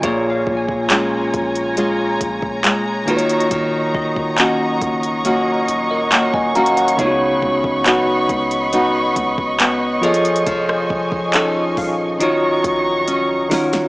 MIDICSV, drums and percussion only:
0, 0, Header, 1, 2, 480
1, 0, Start_track
1, 0, Key_signature, -6, "minor"
1, 0, Tempo, 869565
1, 18, Time_signature, 4, 2, 24, 8
1, 7662, End_track
2, 0, Start_track
2, 0, Title_t, "Drums"
2, 18, Note_on_c, 9, 36, 106
2, 18, Note_on_c, 9, 42, 76
2, 73, Note_off_c, 9, 36, 0
2, 73, Note_off_c, 9, 42, 0
2, 258, Note_on_c, 9, 36, 101
2, 313, Note_off_c, 9, 36, 0
2, 378, Note_on_c, 9, 36, 90
2, 433, Note_off_c, 9, 36, 0
2, 497, Note_on_c, 9, 42, 76
2, 498, Note_on_c, 9, 39, 121
2, 552, Note_off_c, 9, 42, 0
2, 554, Note_off_c, 9, 39, 0
2, 738, Note_on_c, 9, 36, 91
2, 738, Note_on_c, 9, 42, 49
2, 793, Note_off_c, 9, 36, 0
2, 793, Note_off_c, 9, 42, 0
2, 858, Note_on_c, 9, 42, 52
2, 913, Note_off_c, 9, 42, 0
2, 977, Note_on_c, 9, 42, 75
2, 1033, Note_off_c, 9, 42, 0
2, 1218, Note_on_c, 9, 36, 92
2, 1219, Note_on_c, 9, 42, 69
2, 1273, Note_off_c, 9, 36, 0
2, 1274, Note_off_c, 9, 42, 0
2, 1338, Note_on_c, 9, 36, 95
2, 1393, Note_off_c, 9, 36, 0
2, 1458, Note_on_c, 9, 42, 74
2, 1461, Note_on_c, 9, 39, 113
2, 1513, Note_off_c, 9, 42, 0
2, 1516, Note_off_c, 9, 39, 0
2, 1699, Note_on_c, 9, 42, 63
2, 1754, Note_off_c, 9, 42, 0
2, 1758, Note_on_c, 9, 42, 62
2, 1813, Note_off_c, 9, 42, 0
2, 1818, Note_on_c, 9, 42, 62
2, 1874, Note_off_c, 9, 42, 0
2, 1879, Note_on_c, 9, 42, 59
2, 1934, Note_off_c, 9, 42, 0
2, 1938, Note_on_c, 9, 36, 102
2, 1938, Note_on_c, 9, 42, 75
2, 1993, Note_off_c, 9, 36, 0
2, 1993, Note_off_c, 9, 42, 0
2, 2178, Note_on_c, 9, 36, 98
2, 2233, Note_off_c, 9, 36, 0
2, 2298, Note_on_c, 9, 36, 91
2, 2353, Note_off_c, 9, 36, 0
2, 2417, Note_on_c, 9, 42, 70
2, 2418, Note_on_c, 9, 39, 122
2, 2472, Note_off_c, 9, 42, 0
2, 2474, Note_off_c, 9, 39, 0
2, 2658, Note_on_c, 9, 36, 96
2, 2658, Note_on_c, 9, 42, 50
2, 2713, Note_off_c, 9, 36, 0
2, 2713, Note_off_c, 9, 42, 0
2, 2778, Note_on_c, 9, 42, 54
2, 2833, Note_off_c, 9, 42, 0
2, 2897, Note_on_c, 9, 42, 76
2, 2952, Note_off_c, 9, 42, 0
2, 3138, Note_on_c, 9, 42, 69
2, 3193, Note_off_c, 9, 42, 0
2, 3377, Note_on_c, 9, 42, 79
2, 3380, Note_on_c, 9, 39, 120
2, 3432, Note_off_c, 9, 42, 0
2, 3435, Note_off_c, 9, 39, 0
2, 3497, Note_on_c, 9, 36, 92
2, 3553, Note_off_c, 9, 36, 0
2, 3617, Note_on_c, 9, 42, 59
2, 3673, Note_off_c, 9, 42, 0
2, 3677, Note_on_c, 9, 42, 62
2, 3732, Note_off_c, 9, 42, 0
2, 3738, Note_on_c, 9, 42, 63
2, 3793, Note_off_c, 9, 42, 0
2, 3798, Note_on_c, 9, 42, 65
2, 3853, Note_off_c, 9, 42, 0
2, 3857, Note_on_c, 9, 36, 102
2, 3857, Note_on_c, 9, 42, 80
2, 3913, Note_off_c, 9, 36, 0
2, 3913, Note_off_c, 9, 42, 0
2, 4098, Note_on_c, 9, 36, 100
2, 4153, Note_off_c, 9, 36, 0
2, 4218, Note_on_c, 9, 36, 95
2, 4273, Note_off_c, 9, 36, 0
2, 4337, Note_on_c, 9, 42, 74
2, 4339, Note_on_c, 9, 39, 123
2, 4392, Note_off_c, 9, 42, 0
2, 4394, Note_off_c, 9, 39, 0
2, 4577, Note_on_c, 9, 36, 92
2, 4578, Note_on_c, 9, 42, 50
2, 4633, Note_off_c, 9, 36, 0
2, 4633, Note_off_c, 9, 42, 0
2, 4698, Note_on_c, 9, 42, 50
2, 4753, Note_off_c, 9, 42, 0
2, 4817, Note_on_c, 9, 42, 75
2, 4872, Note_off_c, 9, 42, 0
2, 5057, Note_on_c, 9, 36, 95
2, 5057, Note_on_c, 9, 42, 69
2, 5113, Note_off_c, 9, 36, 0
2, 5113, Note_off_c, 9, 42, 0
2, 5177, Note_on_c, 9, 36, 90
2, 5232, Note_off_c, 9, 36, 0
2, 5297, Note_on_c, 9, 42, 80
2, 5300, Note_on_c, 9, 39, 119
2, 5352, Note_off_c, 9, 42, 0
2, 5355, Note_off_c, 9, 39, 0
2, 5537, Note_on_c, 9, 42, 61
2, 5593, Note_off_c, 9, 42, 0
2, 5597, Note_on_c, 9, 42, 61
2, 5652, Note_off_c, 9, 42, 0
2, 5658, Note_on_c, 9, 42, 64
2, 5713, Note_off_c, 9, 42, 0
2, 5717, Note_on_c, 9, 42, 60
2, 5772, Note_off_c, 9, 42, 0
2, 5777, Note_on_c, 9, 36, 109
2, 5777, Note_on_c, 9, 42, 77
2, 5832, Note_off_c, 9, 42, 0
2, 5833, Note_off_c, 9, 36, 0
2, 5902, Note_on_c, 9, 37, 99
2, 5957, Note_off_c, 9, 37, 0
2, 6017, Note_on_c, 9, 36, 95
2, 6073, Note_off_c, 9, 36, 0
2, 6137, Note_on_c, 9, 36, 92
2, 6193, Note_off_c, 9, 36, 0
2, 6257, Note_on_c, 9, 42, 73
2, 6258, Note_on_c, 9, 39, 126
2, 6312, Note_off_c, 9, 42, 0
2, 6313, Note_off_c, 9, 39, 0
2, 6498, Note_on_c, 9, 36, 88
2, 6498, Note_on_c, 9, 46, 49
2, 6553, Note_off_c, 9, 36, 0
2, 6553, Note_off_c, 9, 46, 0
2, 6737, Note_on_c, 9, 42, 77
2, 6792, Note_off_c, 9, 42, 0
2, 6978, Note_on_c, 9, 36, 92
2, 6979, Note_on_c, 9, 42, 69
2, 7033, Note_off_c, 9, 36, 0
2, 7034, Note_off_c, 9, 42, 0
2, 7218, Note_on_c, 9, 42, 74
2, 7273, Note_off_c, 9, 42, 0
2, 7458, Note_on_c, 9, 42, 62
2, 7459, Note_on_c, 9, 46, 81
2, 7461, Note_on_c, 9, 38, 95
2, 7514, Note_off_c, 9, 42, 0
2, 7514, Note_off_c, 9, 46, 0
2, 7516, Note_off_c, 9, 38, 0
2, 7578, Note_on_c, 9, 42, 61
2, 7581, Note_on_c, 9, 38, 94
2, 7634, Note_off_c, 9, 42, 0
2, 7636, Note_off_c, 9, 38, 0
2, 7662, End_track
0, 0, End_of_file